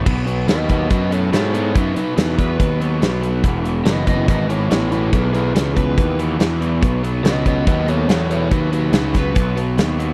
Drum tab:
CC |x---------------|----------------|----------------|----------------|
HH |--x-x-x-x-x-x-x-|x-x-x-x-x-x-x-x-|x-x-x-x-x-x-x-x-|x-x-x-x-x-x-x-x-|
SD |----o-------o---|----oo------o---|----o-------o---|----o-------o---|
BD |o-----o-o-------|o-----o-o-------|o-----o-o-------|o-----o-o-------|

CC |----------------|----------------|
HH |x-x-x-x-x-x-x-x-|x-x-x-x-x-x-x-x-|
SD |----o-------o---|----o-o-----o---|
BD |o-----o-o-------|o-----o-o-------|